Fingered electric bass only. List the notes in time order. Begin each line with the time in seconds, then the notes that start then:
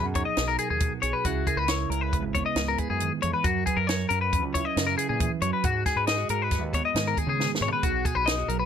0.04 F#2
0.37 B1
0.70 D#2
1.03 B1
1.25 C#2
1.57 C#2
1.90 C#2
2.23 G#1
2.56 C#2
2.90 F#2
3.23 F2
3.45 F#2
3.77 F#2
4.10 F#2
4.43 C#2
4.76 F#2
5.10 A#2
5.42 F#2
5.64 G#2
5.96 G#2
6.29 G#2
6.61 D#2
6.95 G#2
7.27 C#3
7.61 G#2
7.84 B1
8.15 B1
8.48 B1